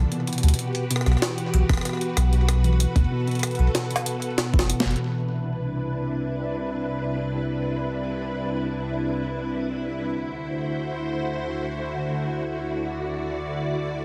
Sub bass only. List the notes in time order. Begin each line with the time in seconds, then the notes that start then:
0.43 D2
1.06 B1
1.54 B1
1.69 F#1
2.17 B1
2.96 D2
3.59 B1
4.54 F#1
4.85 F#1